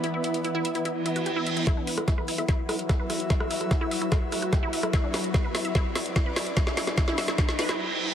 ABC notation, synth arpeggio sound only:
X:1
M:4/4
L:1/16
Q:1/4=147
K:Clyd
V:1 name="Synth arpeggio sound"
E E E z E E e E E z E F G E e E | E D B z E B E e E z E z E B E z | E E E z E E e E E z E F G E e E | E D B z E B E e E z E z E B E z |
E E E z E E e E E z B E z4 |]